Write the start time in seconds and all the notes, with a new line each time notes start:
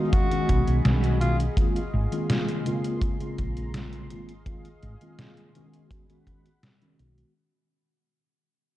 Already playing: D#3 G#3 B3 C#4 F#4 D#5 F5
0.12 F#4 G#4 G#5 B5, kick, closed hi-hat
0.31 D#3 G#3 B3 C#4 F#4, closed hi-hat
0.49 B1, kick, closed hi-hat
0.67 B1, closed hi-hat
0.84 B1 D#3 G#3 B3 C#4 F#4, snare, closed hi-hat
1.04 closed hi-hat
1.21 D#3 G#3 B3 C#4 F4 F#4, closed hi-hat
1.40 closed hi-hat
1.57 D#3 G#3 A#3 C4 F4 F5 C6, kick, closed hi-hat
1.76 closed hi-hat
1.93 G#1
2.12 D#3 G#3 A#3 C4 F4, closed hi-hat
2.30 snare, closed hi-hat
2.49 closed hi-hat
2.65 C#3 G#3 A#3 C4 F4, closed hi-hat
2.84 closed hi-hat
3.02 A#5, kick, closed hi-hat
3.20 C#3 G#3 A#3 C4 F4, closed hi-hat
3.38 A#1, kick, closed hi-hat
3.57 closed hi-hat
3.74 C#3 G#3 A#3 C4 F4, snare, closed hi-hat
3.93 closed hi-hat
4.10 G#1 D#3 G#3 A#3 C4 F4 G#4 D#5 F5, closed hi-hat
4.29 closed hi-hat
4.46 D#3 G#3 A#3 C4 F4, kick, closed hi-hat
4.65 closed hi-hat
4.83 G#1, closed hi-hat
5.01 D#3 G#3 A#3 C4 F4, closed hi-hat
5.19 snare, closed hi-hat
5.37 closed hi-hat
5.55 D#3 G#3 B3 C#4 F#4, closed hi-hat
5.74 closed hi-hat
5.91 F#5 B5, kick, closed hi-hat
6.09 D#3 G#3 B3 C#4 F#4, closed hi-hat
6.27 D#3 G#3 B3 C#4 F#4, kick, closed hi-hat
6.46 closed hi-hat
6.63 snare, closed hi-hat
6.81 D#3 G#3 B3 C#4 F#4, closed hi-hat
6.99 B1, closed hi-hat
7.18 closed hi-hat